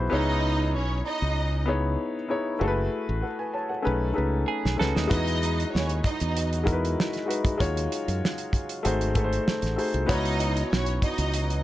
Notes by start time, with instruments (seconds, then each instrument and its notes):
Already playing: grand piano B3 E4 F#4 G#4 B4 C5
0.10 fingered electric bass C#2, grand piano B3 D#4 E4 G#4 C#5, string section D#4 D#5
0.75 fingered electric bass B1, string section C#4 C#5
1.06 string section D#4 D#5
1.22 fingered electric bass C#2
1.66 grand piano B3 D#4 E4 G#4 C#5
2.28 grand piano B3 D#4 E4 G#4 C#5
2.59 fingered electric bass F#1, grand piano A3 E4 F#4 G#4 A4
2.68 grand piano B4
3.09 fingered electric bass A1
3.22 grand piano A4 F#5
3.39 grand piano B4 G#5
3.54 grand piano C#5 A5
3.69 grand piano A4 F#5
3.82 grand piano A3 C#4 D#4 G#4 B4
3.87 fingered electric bass B1
4.14 grand piano A3 C#4 D#4 G#4 B4
4.18 fingered electric bass C#2
4.48 clean electric guitar G#4
4.65 fingered electric bass B1, snare
4.77 fingered electric bass C#2, grand piano A3 C#4 D#4 G#4 B4, clean electric guitar F#4 A4, snare
4.95 fingered electric bass D#2, clean electric guitar D#4 F#4, snare
5.07 french horn section F#3 F#4 G#4 D#5, grand piano G#3 D#4 E4 F#4 B4, string section D#4 D#5, kick, closed hi-hat
5.12 fingered electric bass E2
5.28 closed hi-hat
5.43 closed hi-hat
5.60 closed hi-hat
5.74 fingered electric bass D#2, string section C#4 C#5, snare
5.89 closed hi-hat
6.04 string section D#4 D#5, kick, closed hi-hat
6.20 fingered electric bass E2, closed hi-hat
6.37 closed hi-hat
6.53 closed hi-hat
6.63 grand piano G#3 D#4 E4 F#4 A#4, kick
6.67 closed hi-hat
6.73 grand piano B4
6.85 closed hi-hat
7.00 snare
7.13 snare, closed hi-hat
7.26 grand piano G#3 D#4 E4 F#4 B4
7.31 closed hi-hat
7.45 kick, closed hi-hat
7.58 fingered electric bass D#2, french horn section C#3 F#3 F5, grand piano G#3 D#4 F4 F#4 C#5, kick, closed hi-hat
7.77 closed hi-hat
7.92 closed hi-hat
8.08 fingered electric bass F#2, closed hi-hat
8.25 snare
8.38 closed hi-hat
8.53 kick, closed hi-hat
8.69 closed hi-hat
8.83 fingered electric bass G#1, french horn section C3 A3 F#4, grand piano A3 D#4 F#4 G#4 C5, closed hi-hat
9.01 closed hi-hat
9.15 grand piano A3 D#4 F#4 G#4 A4, kick, closed hi-hat
9.24 grand piano C5
9.33 closed hi-hat
9.47 muted fingered electric bass stroke, snare
9.62 fingered electric bass A1, snare, closed hi-hat
9.76 grand piano A3 D#4 F#4 G#4 C5, open hi-hat
9.94 fingered electric bass C2, closed hi-hat
10.06 fingered electric bass C#2, french horn section E3 F#3 B3 F#4, grand piano B3 D#4 E4 F#4 C#5, string section D#4 D#5, kick, closed hi-hat
10.25 closed hi-hat
10.40 closed hi-hat
10.57 closed hi-hat
10.71 fingered electric bass B1, string section C#4 C#5, snare
10.86 closed hi-hat
11.02 string section D#4 D#5, kick, closed hi-hat
11.18 fingered electric bass C#2, closed hi-hat
11.34 closed hi-hat
11.50 closed hi-hat